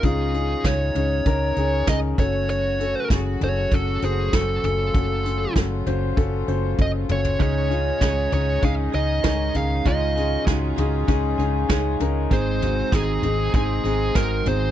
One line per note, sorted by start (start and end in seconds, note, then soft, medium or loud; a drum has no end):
0.00 0.54 C#2 medium
0.00 2.14 G#2 medium
0.00 12.27 C#3 medium
0.00 0.92 C#3 medium
0.00 2.14 D#3 medium
0.00 0.03 C#4 medium
0.00 2.14 C#4 medium
0.00 0.30 C#4 medium
0.00 0.04 D#4 medium
0.00 2.14 D#4 medium
0.00 0.30 D#4 medium
0.00 0.04 F4 medium
0.00 2.19 F#4 medium
0.00 0.34 G#4 medium
0.00 kick medium
0.00 closed hi-hat medium
0.04 0.31 F4 medium
0.04 0.68 G#4 medium
0.34 0.61 C#4 medium
0.34 0.61 D#4 medium
0.34 0.61 G#4 medium
0.34 closed hi-hat medium
0.64 0.90 C#2 medium
0.64 0.92 C#4 medium
0.64 0.92 D#4 medium
0.64 0.92 G#4 medium
0.64 1.89 C#5 medium
0.64 kick medium
0.64 snare medium
0.64 closed hi-hat medium
0.95 1.20 C#2 medium
0.95 1.22 C#4 medium
0.95 1.23 D#4 medium
0.95 1.23 G#4 medium
0.95 closed hi-hat medium
0.95 floor tom medium
1.26 1.51 C#2 medium
1.26 1.53 C#4 medium
1.26 1.53 D#4 medium
1.26 1.53 A#4 medium
1.26 kick loud
1.26 closed hi-hat medium
1.56 1.82 C#2 medium
1.56 1.84 C#4 medium
1.56 1.84 D#4 medium
1.56 1.84 G#4 medium
1.56 closed hi-hat medium
1.87 2.13 C#2 medium
1.87 2.14 C#4 medium
1.87 2.14 D#4 medium
1.87 2.15 G#4 medium
1.87 1.97 D#5 medium
1.87 kick medium
1.87 snare medium
1.87 closed hi-hat medium
2.18 2.94 F#1 medium
2.18 7.36 A2 medium
2.18 7.36 F#3 medium
2.18 2.72 C#4 medium
2.18 12.27 C#4 medium
2.18 4.62 F#4 medium
2.18 2.72 F#4 medium
2.18 2.72 A4 medium
2.18 2.49 C#5 medium
2.18 kick medium
2.18 closed hi-hat medium
2.18 floor tom medium
2.49 3.07 C#5 medium
2.49 closed hi-hat medium
2.79 3.06 C#4 medium
2.79 3.07 F#4 medium
2.79 3.07 A4 medium
2.79 closed hi-hat medium
3.10 3.35 F#1 medium
3.10 3.37 C#4 medium
3.10 3.38 F#4 medium
3.10 3.38 G#4 medium
3.10 kick loud
3.10 snare medium
3.10 closed hi-hat medium
3.41 3.66 F#1 medium
3.41 3.68 C#4 medium
3.41 3.68 F#4 medium
3.41 3.69 A4 medium
3.41 3.74 C#5 loud
3.41 closed hi-hat medium
3.41 floor tom medium
3.71 3.97 F#1 medium
3.71 3.99 C#4 medium
3.71 3.99 F#4 medium
3.71 3.99 A4 medium
3.71 4.01 A4 medium
3.71 kick loud
3.71 closed hi-hat medium
4.02 4.28 F#1 medium
4.02 4.29 C#4 medium
4.02 4.29 F#4 medium
4.02 4.35 G#4 medium
4.02 4.30 C5 medium
4.02 closed hi-hat medium
4.32 4.58 F#1 medium
4.32 4.60 C#4 medium
4.32 4.60 F#4 medium
4.32 4.60 A4 medium
4.32 4.64 A4 medium
4.32 kick medium
4.32 snare medium
4.32 closed hi-hat medium
4.63 4.89 F#1 medium
4.63 4.90 C#4 medium
4.63 7.37 F4 medium
4.63 4.91 F#4 medium
4.63 4.91 A4 medium
4.63 5.53 A4 medium
4.63 closed hi-hat medium
4.63 floor tom medium
4.93 5.45 F#1 loud
4.93 5.21 C#4 medium
4.93 5.21 F#4 medium
4.93 5.21 A4 medium
4.93 kick loud
4.93 closed hi-hat medium
5.25 5.52 C#4 medium
5.25 5.52 F#4 medium
5.25 5.52 A4 medium
5.25 closed hi-hat medium
5.55 5.81 F#1 medium
5.55 5.82 C#4 medium
5.55 5.83 F#4 medium
5.55 5.83 A4 medium
5.55 kick medium
5.55 snare loud
5.55 closed hi-hat medium
5.86 6.12 F#1 medium
5.86 6.13 C#4 medium
5.86 6.13 F#4 medium
5.86 6.14 C5 medium
5.86 closed hi-hat medium
5.86 floor tom medium
6.16 6.42 F#1 medium
6.16 6.44 C#4 loud
6.16 6.44 F#4 medium
6.16 6.44 A4 loud
6.16 kick loud
6.16 closed hi-hat medium
6.47 6.73 F#1 medium
6.47 6.74 C#4 medium
6.47 6.75 F#4 medium
6.47 6.75 C5 medium
6.47 closed hi-hat medium
6.78 7.04 F#1 medium
6.78 7.05 C#4 medium
6.78 7.06 F#4 medium
6.78 7.06 A4 medium
6.78 6.90 D#5 medium
6.78 kick medium
6.78 high tom soft
7.09 7.35 F#1 medium
7.09 7.36 C#4 medium
7.09 7.36 F#4 medium
7.09 7.36 A4 medium
7.09 7.41 C#5 medium
7.09 mid tom medium
7.24 floor tom medium
7.39 7.90 C#2 medium
7.39 14.71 G#2 medium
7.39 7.70 C#3 medium
7.39 8.28 C#3 medium
7.39 14.71 D#3 medium
7.39 7.71 G#3 medium
7.39 7.66 C#4 medium
7.39 7.71 C#4 medium
7.39 7.67 D#4 medium
7.39 9.83 D#4 medium
7.39 7.70 D#4 medium
7.39 7.67 G#4 medium
7.39 7.69 G#4 medium
7.39 8.32 C#5 medium
7.39 kick loud
7.39 closed hi-hat medium
7.70 7.97 C#4 medium
7.70 8.00 C#4 soft
7.70 7.97 D#4 medium
7.70 8.01 D#4 soft
7.70 7.98 F4 medium
7.70 8.01 G#4 medium
7.70 closed hi-hat medium
8.01 8.26 C#2 medium
8.01 8.32 C#3 medium
8.01 8.32 G#3 medium
8.01 8.28 C#4 medium
8.01 8.32 C#4 medium
8.01 8.28 D#4 medium
8.01 8.31 D#4 medium
8.01 8.28 G#4 medium
8.01 8.29 G#4 medium
8.01 kick medium
8.01 snare loud
8.01 closed hi-hat medium
8.31 8.57 C#2 medium
8.31 8.59 C#4 medium
8.31 8.61 C#4 soft
8.31 8.62 D#4 medium
8.31 8.59 D#4 medium
8.31 8.62 G#4 medium
8.31 8.59 G#4 medium
8.31 8.61 C#5 medium
8.31 closed hi-hat medium
8.31 floor tom medium
8.61 8.88 C#2 medium
8.61 8.93 G#3 medium
8.61 8.89 C#4 medium
8.61 8.93 C#4 medium
8.61 8.89 D#4 medium
8.61 8.92 D#4 medium
8.61 8.90 G#4 medium
8.61 8.91 G#4 medium
8.61 8.73 F5 medium
8.61 kick loud
8.61 closed hi-hat medium
8.92 9.19 C#2 loud
8.92 9.20 C#4 medium
8.92 9.23 C#4 soft
8.92 9.23 D#4 medium
8.92 9.21 D#4 medium
8.92 9.24 G#4 medium
8.92 9.21 G#4 medium
8.92 9.57 D#5 medium
8.92 closed hi-hat medium
9.23 9.49 C#2 medium
9.23 9.83 C#3 medium
9.23 9.85 G#3 medium
9.23 9.51 C#4 medium
9.23 9.85 C#4 medium
9.23 9.51 D#4 medium
9.23 9.86 D#4 medium
9.23 9.86 G#4 medium
9.23 9.51 A#4 medium
9.23 kick loud
9.23 snare loud
9.23 closed hi-hat medium
9.54 9.80 C#2 medium
9.54 9.81 C#4 medium
9.54 9.82 D#4 medium
9.54 9.82 G#4 medium
9.54 9.87 F5 medium
9.54 closed hi-hat medium
9.54 floor tom medium
9.85 10.36 C#2 medium
9.85 10.16 C#3 medium
9.85 10.74 C#3 medium
9.85 10.16 G#3 medium
9.85 10.12 C#4 medium
9.85 10.16 C#4 medium
9.85 10.13 D#4 medium
9.85 10.16 D#4 medium
9.85 12.29 F4 medium
9.85 10.13 F4 medium
9.85 10.14 G#4 medium
9.85 10.44 D#5 medium
9.85 kick loud
9.85 closed hi-hat medium
10.16 10.43 C#4 medium
10.16 10.46 C#4 soft
10.16 10.43 D#4 medium
10.16 10.46 D#4 soft
10.16 10.47 G#4 medium
10.16 10.44 G#4 medium
10.16 closed hi-hat medium
10.46 10.72 C#2 medium
10.46 10.77 C#3 medium
10.46 10.78 G#3 medium
10.46 10.74 C#4 medium
10.46 10.78 C#4 medium
10.46 10.74 D#4 medium
10.46 10.77 D#4 medium
10.46 10.74 F#4 medium
10.46 10.75 G#4 medium
10.46 kick loud
10.46 snare medium
10.46 closed hi-hat medium
10.76 11.03 C#2 medium
10.76 11.04 C#4 medium
10.76 11.07 C#4 soft
10.76 11.05 D#4 medium
10.76 11.08 D#4 medium
10.76 11.08 G#4 medium
10.76 11.05 G#4 medium
10.76 closed hi-hat medium
10.76 floor tom medium
11.07 11.33 C#2 medium
11.07 11.39 G#3 medium
11.07 11.35 C#4 loud
11.07 11.39 C#4 medium
11.07 11.35 D#4 medium
11.07 11.38 D#4 medium
11.07 11.36 G#4 loud
11.07 11.37 G#4 medium
11.07 kick loud
11.07 closed hi-hat medium
11.38 11.64 C#2 loud
11.38 11.66 C#4 medium
11.38 11.69 C#4 soft
11.38 11.66 D#4 medium
11.38 11.69 D#4 soft
11.38 11.69 G#4 medium
11.38 11.66 G#4 medium
11.38 closed hi-hat medium
11.69 11.95 C#2 medium
11.69 12.30 C#3 medium
11.69 12.31 G#3 medium
11.69 11.96 C#4 medium
11.69 12.31 C#4 medium
11.69 11.97 D#4 medium
11.69 12.31 D#4 medium
11.69 11.97 G#4 medium
11.69 12.32 G#4 medium
11.69 kick medium
11.69 snare loud
11.69 closed hi-hat medium
12.00 12.25 C#2 medium
12.00 12.27 C#4 medium
12.00 12.28 D#4 medium
12.00 12.28 A#4 medium
12.00 closed hi-hat medium
12.00 floor tom medium
12.30 12.81 G#1 loud
12.30 12.61 G#2 medium
12.30 13.19 G#2 medium
12.30 14.71 C3 medium
12.30 12.62 D#3 medium
12.30 12.62 G#3 medium
12.30 14.71 C4 medium
12.30 12.58 C4 medium
12.30 12.62 C4 medium
12.30 14.71 D#4 medium
12.30 12.58 D#4 medium
12.30 12.61 D#4 medium
12.30 12.58 G#4 medium
12.30 12.59 G#4 medium
12.30 12.95 C5 medium
12.30 kick loud
12.30 closed hi-hat medium
12.61 12.91 G#3 soft
12.61 12.89 C4 medium
12.61 12.92 C4 soft
12.61 12.92 D#4 medium
12.61 12.89 D#4 medium
12.61 12.89 F#4 medium
12.61 12.92 G#4 medium
12.61 closed hi-hat medium
12.61 floor tom medium
12.91 13.18 G#1 medium
12.91 13.23 G#2 medium
12.91 13.23 D#3 medium
12.91 13.23 G#3 medium
12.91 13.19 C4 medium
12.91 13.23 C4 medium
12.91 13.20 D#4 medium
12.91 13.22 D#4 medium
12.91 13.20 G#4 medium
12.91 13.21 G#4 medium
12.91 13.51 G#4 medium
12.91 kick loud
12.91 snare loud
12.91 closed hi-hat medium
13.22 13.48 G#1 loud
13.22 13.52 G#3 soft
13.22 13.50 C4 medium
13.22 13.53 C4 medium
13.22 13.54 D#4 medium
13.22 13.51 D#4 medium
13.22 13.53 G#4 medium
13.22 13.51 G#4 medium
13.22 closed hi-hat medium
13.22 floor tom medium
13.53 13.79 G#1 medium
13.53 13.84 G#3 medium
13.53 13.81 C4 medium
13.53 13.85 C4 medium
13.53 13.81 D#4 medium
13.53 13.84 D#4 medium
13.53 13.81 G#4 loud
13.53 14.16 G#4 medium
13.53 13.83 G#4 medium
13.53 kick loud
13.53 closed hi-hat medium
13.84 14.09 G#1 medium
13.84 14.15 G#3 soft
13.84 14.11 C4 medium
13.84 14.15 C4 medium
13.84 14.16 D#4 soft
13.84 14.12 D#4 medium
13.84 14.15 G#4 medium
13.84 14.12 G#4 medium
13.84 closed hi-hat medium
14.15 14.40 G#1 medium
14.15 14.71 G#2 medium
14.15 14.71 D#3 medium
14.15 14.71 G#3 medium
14.15 14.42 C4 medium
14.15 14.71 C4 medium
14.15 14.43 D#4 medium
14.15 14.71 D#4 medium
14.15 14.43 F#4 medium
14.15 14.71 G#4 medium
14.15 14.47 A#4 medium
14.15 kick loud
14.15 snare loud
14.15 closed hi-hat medium
14.45 14.71 G#1 medium
14.45 14.71 C4 medium
14.45 14.71 D#4 medium
14.45 14.71 G#4 medium
14.45 14.71 C5 medium
14.45 closed hi-hat medium
14.45 floor tom medium